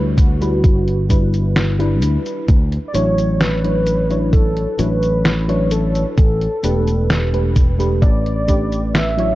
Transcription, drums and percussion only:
0.18 kick, closed hi-hat, cabasa
0.42 closed hi-hat, cabasa
0.64 kick, closed hi-hat, cabasa
0.88 closed hi-hat
1.10 kick, closed hi-hat, cabasa
1.34 closed hi-hat, cabasa
1.56 snare, closed hi-hat, cabasa
1.80 closed hi-hat
2.02 closed hi-hat, cabasa
2.26 closed hi-hat, cabasa
2.48 kick, closed hi-hat, cabasa
2.72 closed hi-hat
2.95 closed hi-hat, cabasa
3.18 closed hi-hat, cabasa
3.41 snare, closed hi-hat, cabasa
3.64 closed hi-hat
3.87 closed hi-hat, cabasa
4.11 closed hi-hat, cabasa
4.33 kick, closed hi-hat, cabasa
4.57 closed hi-hat
4.79 closed hi-hat, cabasa
5.03 closed hi-hat, cabasa
5.25 snare, closed hi-hat, cabasa
5.49 closed hi-hat
5.71 closed hi-hat, cabasa
5.95 closed hi-hat, cabasa
6.18 kick, closed hi-hat, cabasa
6.41 closed hi-hat
6.64 closed hi-hat, cabasa
6.88 closed hi-hat, cabasa
7.10 snare, closed hi-hat, cabasa
7.34 closed hi-hat
7.56 kick, closed hi-hat, cabasa
7.80 closed hi-hat, cabasa
8.02 kick, closed hi-hat, cabasa
8.26 closed hi-hat
8.48 kick, closed hi-hat, cabasa
8.72 closed hi-hat, cabasa
8.95 snare, closed hi-hat, cabasa
9.18 closed hi-hat

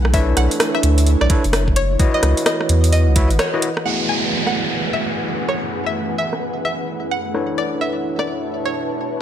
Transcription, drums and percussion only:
0.05 cross-stick
0.14 kick, closed hi-hat
0.37 cross-stick, closed hi-hat
0.51 closed hi-hat
0.60 cross-stick, closed hi-hat
0.75 cross-stick
0.83 closed hi-hat
0.98 closed hi-hat
1.07 closed hi-hat
1.21 cross-stick
1.30 kick, closed hi-hat
1.44 closed hi-hat
1.53 cross-stick, closed hi-hat
1.68 kick
1.76 closed hi-hat
2.00 kick, closed hi-hat
2.23 cross-stick, closed hi-hat
2.37 closed hi-hat
2.46 cross-stick, closed hi-hat
2.61 cross-stick
2.69 closed hi-hat
2.84 closed hi-hat
2.93 closed hi-hat
3.16 kick, closed hi-hat
3.30 closed hi-hat
3.39 cross-stick, closed hi-hat
3.62 closed hi-hat
3.77 cross-stick
4.09 closed hi-hat
4.47 cross-stick
4.55 closed hi-hat
5.02 closed hi-hat
5.48 cross-stick
5.95 closed hi-hat
6.33 cross-stick
6.41 closed hi-hat
6.88 closed hi-hat
7.35 cross-stick, closed hi-hat
7.81 closed hi-hat
8.19 cross-stick
8.28 closed hi-hat
8.74 closed hi-hat

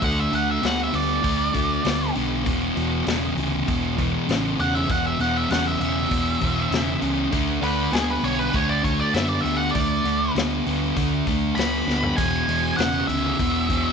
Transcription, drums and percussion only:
0.02 kick, open hi-hat
0.33 open hi-hat
0.63 snare, open hi-hat
0.93 open hi-hat
1.24 kick, open hi-hat
1.54 kick, open hi-hat
1.85 snare, open hi-hat
2.15 open hi-hat
2.46 kick, open hi-hat
2.77 open hi-hat
3.07 snare, open hi-hat
3.38 open hi-hat
3.68 kick, open hi-hat
3.98 kick, open hi-hat
4.29 snare, open hi-hat
4.60 open hi-hat
4.89 kick, open hi-hat
5.20 open hi-hat
5.50 snare, open hi-hat
5.81 open hi-hat
6.11 kick, open hi-hat
6.41 kick, open hi-hat
6.72 snare, open hi-hat
7.02 open hi-hat
7.32 kick, open hi-hat
7.63 open hi-hat
7.93 snare, open hi-hat
8.24 open hi-hat
8.54 kick, open hi-hat
8.84 kick, open hi-hat
9.14 snare, open hi-hat
9.46 open hi-hat
9.75 kick, open hi-hat
10.05 open hi-hat
10.36 snare, open hi-hat
10.67 open hi-hat
10.96 kick, open hi-hat
11.27 kick, open hi-hat
11.57 snare, open hi-hat
11.89 snare
12.03 floor tom
12.18 kick, open hi-hat, splash
12.49 open hi-hat
12.78 snare, open hi-hat
13.09 open hi-hat
13.39 kick, open hi-hat
13.70 kick, open hi-hat

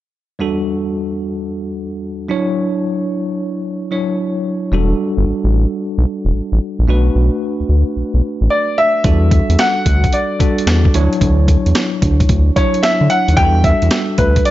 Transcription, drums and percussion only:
9.04 kick, closed hi-hat
9.31 kick, closed hi-hat
9.50 closed hi-hat
9.59 snare, closed hi-hat
9.86 kick, closed hi-hat
10.04 kick, closed hi-hat
10.13 closed hi-hat
10.40 kick, closed hi-hat
10.58 closed hi-hat
10.67 snare, closed hi-hat
10.85 kick
10.94 closed hi-hat
11.13 closed hi-hat
11.21 kick, closed hi-hat
11.48 kick, closed hi-hat
11.66 closed hi-hat
11.75 snare, closed hi-hat
12.02 kick, closed hi-hat
12.20 kick, closed hi-hat
12.29 kick, closed hi-hat
12.56 kick, closed hi-hat
12.74 closed hi-hat
12.83 snare, closed hi-hat
13.10 closed hi-hat
13.28 closed hi-hat
13.37 kick, closed hi-hat
13.64 kick, closed hi-hat
13.82 closed hi-hat
13.91 snare, closed hi-hat
14.18 kick, closed hi-hat
14.36 kick, closed hi-hat
14.45 closed hi-hat

